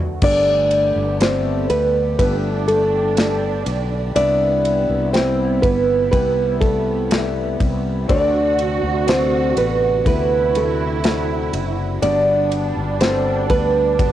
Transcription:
Already playing: fretless electric bass D2, analog synth pad D3 A3 F#4, grand piano A3 D4 F#4 B4 C5
0.22 fretless electric bass G1, grand piano G2 B3 D4 G4 A4 D5, analog synth pad D3 A3 G4, cello section B3, nylon-string guitar D4 D5, kick, crash
0.71 ride
0.96 fretless electric bass G1
1.20 grand piano A3 D4 G4 A4 D5, nylon-string guitar C4 C5, snare, ride
1.70 fretless electric bass D2, nylon-string guitar B3 B4, ride
2.18 fretless electric bass G1, grand piano B3 D4 G4 A4 B4, nylon-string guitar B3 B4, cello section D4, kick, ride
2.68 nylon-string guitar A3 A4, ride
3.16 grand piano B3 D4 G4 A4 D5, snare, ride
3.66 fretless electric bass B1, ride
4.15 fretless electric bass C2, grand piano C3 B3 E4 G4 B4 E5, analog synth pad C3 G3 E4, cello section B3, nylon-string guitar D4 D5, ride
4.65 ride
4.89 fretless electric bass C2
5.13 grand piano G3 E4 G4 G5, nylon-string guitar C4 C5, snare, ride
5.62 fretless electric bass G1, nylon-string guitar B3 B4, kick, ride
6.12 fretless electric bass C2, grand piano C3 E4 G4 B4 G5, nylon-string guitar B3 B4, kick, ride
6.61 nylon-string guitar A3 A4, kick, ride
7.10 grand piano C3 E4 G4 B4 D5, snare, ride
7.17 grand piano E5
7.60 fretless electric bass C2, kick, ride
8.08 fretless electric bass D2, analog synth pad C3 D3 F#4, grand piano D3 C4 D4 F#4 A4 D5, nylon-string guitar D4 D5, cello section F#4, kick, ride
8.59 ride
8.83 fretless electric bass D2
9.06 grand piano C3 D4 F#4 A4 D5, nylon-string guitar C4 C5, snare, ride
9.57 fretless electric bass A1, nylon-string guitar B3 B4, ride
10.05 fretless electric bass D2, grand piano C3 D4 F#4 A4 E5, nylon-string guitar B3 B4, cello section E4, kick, ride
10.55 nylon-string guitar A3 A4, ride
11.04 grand piano C4 D4 F#4 A4 C5, snare, ride
11.53 fretless electric bass F#1, ride
12.02 fretless electric bass G1, grand piano G2 B3 D4 F#4 G4 D5, analog synth pad G3 D4, cello section D4, nylon-string guitar D4 D5, ride
12.51 ride
12.77 fretless electric bass G1
13.01 grand piano G3 D4 F#4 G4 A4, nylon-string guitar C4 C5, snare, ride
13.50 fretless electric bass D2, nylon-string guitar B3 B4, kick, ride
13.99 fretless electric bass G1, grand piano B3 D4 F#4 G4 B4, kick, ride

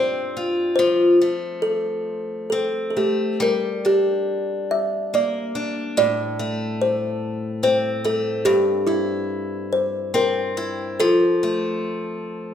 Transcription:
Already playing: steel-string acoustic guitar G2 C4 F4, kalimba C5
0.37 steel-string acoustic guitar F4
0.76 steel-string acoustic guitar F3, kalimba C5
1.21 steel-string acoustic guitar A3
1.62 kalimba A4
2.50 steel-string acoustic guitar C4, kalimba A4
2.90 kalimba A4
2.97 steel-string acoustic guitar A3, kalimba G4
3.40 steel-string acoustic guitar G3, kalimba A#4
3.85 steel-string acoustic guitar D4, kalimba G4
4.71 kalimba E5
5.14 steel-string acoustic guitar A#3, kalimba D5
5.55 steel-string acoustic guitar D4
5.97 steel-string acoustic guitar A2, kalimba D5
6.39 steel-string acoustic guitar A3
6.82 kalimba C5
7.63 steel-string acoustic guitar C4, kalimba C5
8.04 steel-string acoustic guitar A3, kalimba A4
8.45 steel-string acoustic guitar G2, kalimba G4
8.87 kalimba E4, steel-string acoustic guitar E4
9.73 kalimba C5
10.14 steel-string acoustic guitar C4, kalimba A#4
10.57 steel-string acoustic guitar E4
11.00 steel-string acoustic guitar F3, kalimba A4
11.43 steel-string acoustic guitar A3

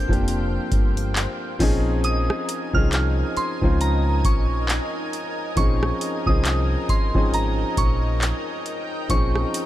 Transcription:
Already playing: grand piano F3 A#3 C4 D4 G4 A4, analog synth pad C4 C5 F5 G5, synth bell G6
0.08 fingered electric bass F1, grand piano F3 A#3 C4 D4 G4, kick
0.13 closed hi-hat
0.28 closed hi-hat
0.72 fingered electric bass G1, kick, closed hi-hat
0.97 closed hi-hat
1.16 clap, closed hi-hat
1.59 fingered electric bass A#1, grand piano F3 C4 C#4 D#4 G#4, analog synth pad D#4 A#4 D#5 G#5, kick, open hi-hat
2.04 synth bell D#6, closed hi-hat
2.30 cross-stick
2.49 closed hi-hat
2.73 fingered electric bass C2, grand piano F3 C4 C#4 D#4 G#4, synth bell F6, kick
2.92 clap, closed hi-hat
3.37 synth bell C6, muted fingered electric bass stroke, closed hi-hat
3.61 fingered electric bass C#2, grand piano F3 C4 C#4 D#4 F4, kick
3.81 synth bell A#5, closed hi-hat
4.25 fingered electric bass A#1, synth bell C#6, kick, closed hi-hat
4.69 clap, closed hi-hat
5.13 closed hi-hat
5.56 fingered electric bass A#1, grand piano F3 C4 C#4 D#4 G#4, synth bell C#6, kick, closed hi-hat
5.83 cross-stick
6.01 closed hi-hat
6.26 fingered electric bass C2, grand piano F3 C4 C#4 D#4 G#4, synth bell D#6, kick
6.45 clap, closed hi-hat
6.89 synth bell C6, muted fingered electric bass stroke, kick, closed hi-hat
7.14 fingered electric bass G#1, grand piano F3 C4 C#4 D#4 G#4, kick
7.34 synth bell A#5, closed hi-hat
7.77 fingered electric bass A#1, synth bell C#6, kick, closed hi-hat
8.22 clap, closed hi-hat
8.65 analog synth pad G5, closed hi-hat
9.09 fingered electric bass A#1, grand piano F3 C4 C#4 D#4 G#4, synth bell C#6, kick, closed hi-hat
9.35 cross-stick
9.54 closed hi-hat

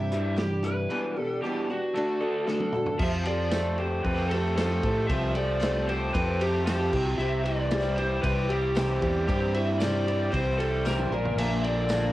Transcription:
Already playing: fingered electric bass G2, twelve-string acoustic guitar C3 G3 D4 E4 G4, lead electric guitar E5
0.11 overdriven electric guitar C3 E3 G3, twelve-string acoustic guitar D4 E4 G4, closed hi-hat
0.36 overdriven electric guitar C3 E3, twelve-string acoustic guitar G3 D4 E4 G4, lead electric guitar G4, snare, closed hi-hat
0.63 overdriven electric guitar C3 E3, twelve-string acoustic guitar D4 E4 G4, lead electric guitar B4, closed hi-hat
0.90 overdriven electric guitar E2 B2 E3, twelve-string acoustic guitar E3 G3 B3 D4 G4
1.16 overdriven electric guitar E2 B2, twelve-string acoustic guitar B3 D4 G4, lead electric guitar A4
1.42 overdriven electric guitar E2 B2 E3, twelve-string acoustic guitar G3 B3, lead electric guitar G4
1.46 twelve-string acoustic guitar D4 G4
1.68 overdriven electric guitar E2 B2, twelve-string acoustic guitar B3 D4 G4, lead electric guitar F#4
1.94 overdriven electric guitar D3 A3 D4, twelve-string acoustic guitar D3 A3 D4 F#4 A4
2.21 overdriven electric guitar D3 A3 D4, twelve-string acoustic guitar D4 F#4 A4, lead electric guitar A4
2.46 overdriven electric guitar D3 A3, twelve-string acoustic guitar A3 D4 F#4 A4, lead electric guitar A4, snare
2.60 high tom
2.72 overdriven electric guitar D3 A3, twelve-string acoustic guitar F#4 A4, mid tom
2.77 twelve-string acoustic guitar D4
2.86 floor tom
2.99 fingered electric bass F2, overdriven electric guitar F3, twelve-string acoustic guitar F3 C4 G4 A4, lead electric guitar E5, kick, crash
3.25 overdriven electric guitar F3, twelve-string acoustic guitar C4 G4 A4, lead electric guitar D5, ride
3.51 twelve-string acoustic guitar F3 C4 G4 A4, overdriven electric guitar A3, snare, ride, tambourine
3.78 overdriven electric guitar G4, twelve-string acoustic guitar G4 A4, lead electric guitar C5, ride
3.82 twelve-string acoustic guitar C4
4.04 fingered electric bass F2, twelve-string acoustic guitar F3 C4 G4 A4, overdriven electric guitar C4, lead electric guitar B4, kick, ride
4.29 overdriven electric guitar A3, lead electric guitar A4, twelve-string acoustic guitar A4, ride
4.33 twelve-string acoustic guitar C4 G4
4.56 overdriven electric guitar F3, twelve-string acoustic guitar F3 C4 G4 A4, lead electric guitar A4, snare, ride, tambourine
4.83 fingered electric bass A2, overdriven electric guitar A3, twelve-string acoustic guitar C4 G4 A4, kick, ride
5.07 fingered electric bass C2, twelve-string acoustic guitar F3 C4, overdriven electric guitar F3, lead electric guitar E5, kick, ride
5.11 twelve-string acoustic guitar G4 A4
5.34 overdriven electric guitar F3, twelve-string acoustic guitar C4 G4 A4, lead electric guitar D5, ride
5.60 twelve-string acoustic guitar F3 C4 G4 A4, overdriven electric guitar A3, snare, ride, tambourine
5.87 twelve-string acoustic guitar C4 G4 A4, overdriven electric guitar G4, lead electric guitar C5, ride
6.13 fingered electric bass F2, twelve-string acoustic guitar F3 C4 G4 A4, overdriven electric guitar C4, lead electric guitar B4, kick, ride
6.40 overdriven electric guitar A3, twelve-string acoustic guitar C4 G4 A4, lead electric guitar G4, ride
6.66 twelve-string acoustic guitar F3 C4 G4 A4, overdriven electric guitar F3, lead electric guitar G4, snare, ride, tambourine
6.93 fingered electric bass C2, overdriven electric guitar C3, twelve-string acoustic guitar C4 E4 G4, kick, crash
7.09 lead electric guitar F4
7.18 fingered electric bass C2, twelve-string acoustic guitar C3 G3 C4 E4 G4, overdriven electric guitar C3, lead electric guitar E5
7.43 overdriven electric guitar E3, twelve-string acoustic guitar C4 E4 G4, lead electric guitar D5, ride
7.71 twelve-string acoustic guitar C3 G3 C4 E4 G4, overdriven electric guitar G3, snare, ride, tambourine
7.97 twelve-string acoustic guitar C4 E4 G4, overdriven electric guitar G4, lead electric guitar C5, ride
8.22 fingered electric bass C2, twelve-string acoustic guitar G3 C4 E4 G4, overdriven electric guitar C4, lead electric guitar B4, kick, ride
8.49 overdriven electric guitar G3, twelve-string acoustic guitar C4 E4 G4, lead electric guitar G4, ride
8.75 twelve-string acoustic guitar C3 G3 C4 E4 G4, overdriven electric guitar E3, snare, ride, tambourine
9.02 fingered electric bass E2, overdriven electric guitar G3, twelve-string acoustic guitar C4 E4 G4, kick, ride
9.28 fingered electric bass G2, twelve-string acoustic guitar C3 G3 C4 E4 G4, overdriven electric guitar C3, lead electric guitar G4, kick, ride
9.54 overdriven electric guitar E3, twelve-string acoustic guitar C4 E4 G4, lead electric guitar E5, ride
9.79 twelve-string acoustic guitar C3 G3 C4 E4 G4, overdriven electric guitar G3, lead electric guitar D5, snare, ride, tambourine
10.06 twelve-string acoustic guitar C4 E4 G4, overdriven electric guitar G4, ride
10.32 fingered electric bass C2, twelve-string acoustic guitar G3 C4 E4 G4, overdriven electric guitar C4, lead electric guitar C5, kick, ride
10.58 overdriven electric guitar G3, twelve-string acoustic guitar C4 E4 G4, lead electric guitar A4, ride
10.85 twelve-string acoustic guitar C3 G3 C4 E4 G4, overdriven electric guitar E3, lead electric guitar A#4, snare, tambourine
10.99 high tom
11.11 fingered electric bass A#1, overdriven electric guitar A#2, twelve-string acoustic guitar F3 A#3 D4 A#4, mid tom
11.25 floor tom
11.36 fingered electric bass A#1, twelve-string acoustic guitar A#2 D3 F3 A#3, overdriven electric guitar A#2, lead electric guitar E5, ride, crash
11.40 twelve-string acoustic guitar D4 A#4
11.63 overdriven electric guitar D3, twelve-string acoustic guitar F3 A#3 D4 A#4, lead electric guitar D5, ride
11.89 twelve-string acoustic guitar A#2 D3 F3 A#3 D4 A#4, overdriven electric guitar A#3, snare, ride, tambourine

